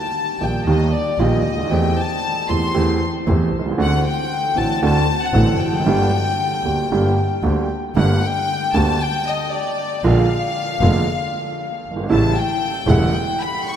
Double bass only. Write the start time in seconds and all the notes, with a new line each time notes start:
0.40 A#1
0.65 D#2
1.18 A#1
1.44 D2
1.71 E2
2.50 E2
2.75 E2
3.27 E2
3.53 C2
3.79 D2
4.55 A1
4.82 D2
5.33 A1
5.58 F1
5.84 G1
6.64 D2
6.90 G1
7.43 D2
7.96 G1
8.74 D2
10.04 A#1
10.81 F1
11.84 G1
12.10 A1
12.87 E1